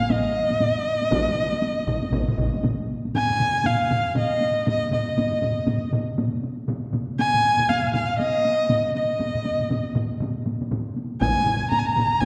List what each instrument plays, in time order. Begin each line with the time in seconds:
Already playing: erhu F5
0.00 taiko low-mid, taiko high
0.09 erhu D#5, taiko, taiko low-mid, taiko high
0.51 taiko low-mid, taiko high
0.60 taiko low-mid, taiko high
1.02 taiko high
1.11 taiko, taiko low-mid, taiko mid, taiko high
1.52 taiko high
1.62 taiko high
1.88 taiko, taiko low-mid, taiko mid
2.03 taiko high
2.12 taiko, taiko low-mid, taiko mid, taiko high
2.28 taiko low-mid, taiko mid
2.38 taiko, taiko low-mid, taiko mid
2.54 taiko high
2.64 taiko low-mid, taiko mid, taiko high
2.80 taiko high
3.05 taiko high
3.14 erhu G#5, taiko low-mid, taiko mid, taiko high
3.30 taiko low-mid, taiko mid, taiko high
3.40 taiko low-mid, taiko mid, taiko high
3.55 taiko high
3.64 erhu F5, taiko low-mid, taiko mid, taiko high
3.90 taiko low-mid, taiko mid, taiko high
4.05 taiko high
4.15 erhu D#5, taiko low-mid, taiko mid, taiko high
4.30 taiko high
4.41 taiko high
4.66 erhu D#5, taiko low-mid, taiko mid, taiko high
4.82 taiko high
4.91 erhu D#5, taiko low-mid, taiko mid, taiko high
5.08 taiko high
5.17 taiko low-mid, taiko mid, taiko high
5.32 taiko low-mid, taiko mid, taiko high
5.42 taiko low-mid, taiko mid, taiko high
5.58 taiko high
5.67 taiko low-mid, taiko mid, taiko high
5.82 taiko high
5.92 taiko low-mid, taiko mid, taiko high
6.08 taiko high
6.18 taiko low-mid, taiko mid, taiko high
6.34 taiko high
6.44 taiko high
6.68 taiko low-mid, taiko mid, taiko high
6.84 taiko high
6.93 taiko low-mid, taiko mid, taiko high
7.10 taiko high
7.19 erhu G#5, taiko high
7.33 taiko low-mid, taiko mid, taiko high
7.45 taiko high
7.58 taiko low-mid, taiko mid, taiko high
7.69 erhu F5, taiko low-mid, taiko mid, taiko high
7.84 taiko low-mid, taiko mid, taiko high
7.93 erhu F5, taiko low-mid, taiko mid, taiko high
8.10 taiko high
8.18 erhu D#5, taiko high
8.35 taiko high
8.45 taiko high
8.69 taiko low-mid, taiko mid, taiko high
8.85 taiko high
8.95 erhu D#5, taiko high
9.11 taiko high
9.20 taiko low-mid, taiko mid, taiko high
9.35 taiko low-mid, taiko mid, taiko high
9.44 taiko low-mid, taiko mid, taiko high
9.59 taiko low-mid, taiko mid, taiko high
9.70 taiko low-mid, taiko mid, taiko high
9.95 taiko low-mid, taiko mid, taiko high
10.12 taiko high
10.20 taiko low-mid, taiko mid, taiko high
10.37 taiko high
10.46 taiko low-mid, taiko mid, taiko high
10.61 taiko low-mid, taiko mid, taiko high
10.71 taiko low-mid, taiko mid, taiko high
10.87 taiko high
10.96 taiko high
11.12 taiko high
11.21 erhu G#5, taiko, taiko low-mid, taiko mid, taiko high
11.36 taiko low-mid, taiko mid, taiko high
11.46 taiko low-mid, taiko mid, taiko high
11.63 taiko high
11.71 erhu A#5, taiko low-mid, taiko mid, taiko high
11.79 erhu G#5
11.86 erhu A#5, taiko high
11.96 taiko low-mid, taiko mid, taiko high
12.13 taiko high
12.20 erhu G#5, taiko, taiko low-mid, taiko mid